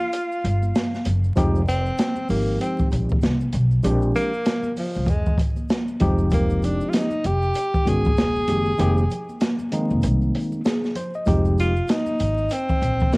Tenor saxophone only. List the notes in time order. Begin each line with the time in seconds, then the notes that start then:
Already playing: F4
1.69 C4
2.30 A#3
2.61 C4
4.16 A#3
4.79 F3
5.10 G#3
6.34 A#3
6.65 D4
6.89 F4
6.96 D#4
7.27 G4
7.88 G#4
11.60 F4
11.90 D#4
12.53 C4